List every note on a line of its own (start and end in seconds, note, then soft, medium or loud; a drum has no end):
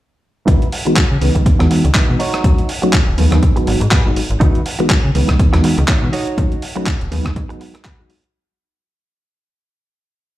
0.47 0.57 C#2 loud
0.47 0.63 E3 medium
0.47 0.63 G#3 medium
0.47 0.63 B3 medium
0.47 0.67 D#4 loud
0.47 0.63 D#4 medium
0.47 0.67 E4 medium
0.47 0.67 F#4 loud
0.47 0.63 F#4 medium
0.47 0.67 B4 loud
0.47 kick loud
0.47 closed hi-hat medium
0.62 closed hi-hat soft
0.72 open hi-hat loud
0.85 0.99 E3 medium
0.85 0.99 G#3 medium
0.85 0.99 B3 medium
0.85 0.99 D#4 medium
0.85 0.99 F#4 medium
0.85 muted clean electric guitar stroke medium
0.85 closed hi-hat soft
0.96 muted clean electric guitar stroke soft
0.96 kick loud
0.96 clap loud
0.96 closed hi-hat medium
1.11 1.18 C#3 medium
1.21 1.30 C#2 loud
1.21 1.57 E3 medium
1.21 1.57 G#3 medium
1.21 1.57 B3 medium
1.21 1.57 D#4 medium
1.21 1.57 B4 medium
1.21 open hi-hat medium
1.35 1.42 C#2 loud
1.35 muted clean electric guitar stroke soft
1.35 kick medium
1.35 closed hi-hat medium
1.46 1.57 E2 soft
1.46 kick loud
1.46 closed hi-hat medium
1.59 1.67 E2 loud
1.59 1.82 E3 medium
1.59 1.82 G#3 medium
1.59 1.82 B3 medium
1.59 1.82 D#4 medium
1.59 1.82 F#4 medium
1.59 muted clean electric guitar stroke loud
1.59 cross-stick medium
1.59 closed hi-hat soft
1.70 muted clean electric guitar stroke soft
1.70 open hi-hat loud
1.84 1.91 C#2 medium
1.84 muted clean electric guitar stroke soft
1.84 closed hi-hat medium
1.95 2.09 D#4 medium
1.95 2.09 E4 medium
1.95 2.09 F#4 medium
1.95 2.10 B4 medium
1.95 kick loud
1.95 clap loud
1.95 closed hi-hat medium
2.09 2.16 B2 medium
2.09 2.19 E3 medium
2.09 2.19 G#3 medium
2.09 2.19 B3 medium
2.09 2.19 D#4 medium
2.09 2.19 F#4 medium
2.19 2.69 D#4 medium
2.19 2.69 F#4 medium
2.19 2.70 C#5 medium
2.19 open hi-hat loud
2.34 cross-stick medium
2.34 closed hi-hat soft
2.44 2.53 D#2 loud
2.44 2.60 F#3 medium
2.44 2.60 A3 medium
2.44 2.60 C#4 medium
2.44 2.60 D#4 medium
2.44 2.60 F#4 medium
2.44 kick loud
2.44 closed hi-hat medium
2.58 closed hi-hat soft
2.69 open hi-hat loud
2.82 2.95 F#3 medium
2.82 2.95 A3 medium
2.82 2.95 C#4 medium
2.82 2.96 D#4 medium
2.82 2.96 F#4 loud
2.82 muted clean electric guitar stroke medium
2.82 closed hi-hat soft
2.93 muted clean electric guitar stroke soft
2.93 kick loud
2.93 clap loud
2.93 closed hi-hat medium
3.07 3.14 D#1 medium
3.18 3.27 D#2 loud
3.18 3.53 F#3 medium
3.18 3.53 G#3 medium
3.18 3.53 B3 medium
3.18 3.54 D#4 medium
3.18 3.54 B4 medium
3.18 open hi-hat medium
3.31 3.39 D#2 loud
3.31 muted clean electric guitar stroke soft
3.31 cross-stick medium
3.31 closed hi-hat soft
3.43 kick loud
3.43 closed hi-hat medium
3.56 3.79 F#3 medium
3.56 3.79 G#3 medium
3.56 3.79 B3 medium
3.56 3.79 D#4 medium
3.56 3.79 F#4 medium
3.56 muted clean electric guitar stroke loud
3.56 closed hi-hat soft
3.67 3.76 G#1 loud
3.67 muted clean electric guitar stroke soft
3.67 open hi-hat loud
3.81 3.88 G#2 medium
3.81 muted clean electric guitar stroke soft
3.81 closed hi-hat medium
3.91 4.06 F#4 medium
3.91 4.06 G#4 medium
3.91 4.06 B4 medium
3.91 kick loud
3.91 clap loud
3.91 closed hi-hat medium
4.06 4.13 G#1 loud
4.06 4.18 F#3 medium
4.06 4.18 G#3 medium
4.06 4.18 B3 medium
4.06 4.18 D#4 medium
4.06 4.19 F#4 medium
4.16 muted clean electric guitar stroke soft
4.16 open hi-hat loud
4.30 4.37 G#1 medium
4.30 closed hi-hat soft
4.40 4.50 C#2 loud
4.40 4.56 E3 medium
4.40 4.57 G#3 medium
4.40 4.57 B3 medium
4.40 4.60 D#4 loud
4.40 4.57 D#4 medium
4.40 4.60 E4 loud
4.40 4.60 F#4 loud
4.40 4.57 F#4 medium
4.40 4.61 B4 loud
4.40 kick loud
4.40 closed hi-hat medium
4.55 closed hi-hat soft
4.66 open hi-hat loud
4.79 4.92 E3 medium
4.79 4.92 G#3 medium
4.79 4.92 B3 medium
4.79 4.92 D#4 medium
4.79 4.92 F#4 loud
4.79 muted clean electric guitar stroke medium
4.90 muted clean electric guitar stroke soft
4.90 kick loud
4.90 clap loud
4.90 closed hi-hat medium
5.04 5.11 C#3 medium
5.15 5.24 C#2 medium
5.15 5.50 E3 medium
5.15 5.50 G#3 medium
5.15 5.50 B3 medium
5.15 5.50 D#4 medium
5.15 5.51 B4 medium
5.15 open hi-hat loud
5.28 5.36 C#2 loud
5.28 muted clean electric guitar stroke soft
5.28 kick medium
5.28 cross-stick medium
5.28 closed hi-hat soft
5.39 kick loud
5.39 closed hi-hat medium
5.53 5.60 E2 loud
5.53 5.75 E3 medium
5.53 5.75 G#3 medium
5.53 5.75 B3 medium
5.53 5.75 D#4 medium
5.53 5.75 F#4 medium
5.53 muted clean electric guitar stroke loud
5.53 cross-stick medium
5.53 closed hi-hat soft
5.64 muted clean electric guitar stroke soft
5.64 open hi-hat loud
5.77 5.85 C#2 medium
5.77 muted clean electric guitar stroke soft
5.77 closed hi-hat soft
5.88 6.02 D#4 medium
5.88 6.03 E4 medium
5.88 6.03 F#4 medium
5.88 6.03 C#5 medium
5.88 kick loud
5.88 clap loud
5.88 closed hi-hat medium
6.02 6.09 B2 loud
6.02 6.12 E3 medium
6.02 6.12 G#3 medium
6.02 6.12 B3 medium
6.02 6.12 D#4 medium
6.02 6.12 F#4 medium
6.13 6.62 D#4 medium
6.13 6.62 F#4 medium
6.13 6.63 C#5 loud
6.13 open hi-hat loud
6.27 closed hi-hat soft
6.37 6.47 D#2 loud
6.37 6.53 F#3 medium
6.37 6.53 A3 medium
6.37 6.53 C#4 medium
6.37 6.53 D#4 medium
6.37 6.53 F#4 medium
6.37 kick loud
6.37 closed hi-hat medium
6.52 closed hi-hat soft
6.62 open hi-hat loud
6.76 6.88 F#3 medium
6.76 6.89 A3 medium
6.76 6.89 C#4 medium
6.76 6.89 D#4 medium
6.76 6.89 F#4 loud
6.76 muted clean electric guitar stroke medium
6.76 closed hi-hat soft
6.86 muted clean electric guitar stroke soft
6.86 kick loud
6.86 clap loud
6.86 closed hi-hat medium
7.01 7.08 D#1 medium
7.01 closed hi-hat soft
7.11 7.21 D#2 loud
7.11 7.47 F#3 medium
7.11 7.47 G#3 medium
7.11 7.47 B3 medium
7.11 7.47 D#4 medium
7.11 7.47 B4 medium
7.11 open hi-hat loud
7.25 7.32 D#2 loud
7.25 muted clean electric guitar stroke soft
7.25 kick medium
7.25 cross-stick medium
7.25 closed hi-hat soft
7.36 7.45 G#2 loud
7.36 kick loud
7.36 closed hi-hat medium
7.49 7.72 F#3 medium
7.49 7.72 G#3 medium
7.49 7.72 B3 medium
7.49 7.72 D#4 medium
7.49 7.72 F#4 medium
7.49 muted clean electric guitar stroke loud
7.49 closed hi-hat soft
7.60 muted clean electric guitar stroke soft
7.60 open hi-hat loud
7.74 muted clean electric guitar stroke soft
7.74 cross-stick medium
7.74 closed hi-hat medium
7.84 7.99 F#4 medium
7.84 7.99 G#4 medium
7.84 8.00 B4 medium
7.84 kick loud
7.84 clap loud
7.84 closed hi-hat medium
7.99 8.11 F#3 medium
7.99 8.12 G#3 medium
7.99 8.12 B3 medium
7.99 8.12 D#4 medium
7.99 8.12 F#4 medium
8.09 muted clean electric guitar stroke soft
8.09 open hi-hat loud
8.24 closed hi-hat soft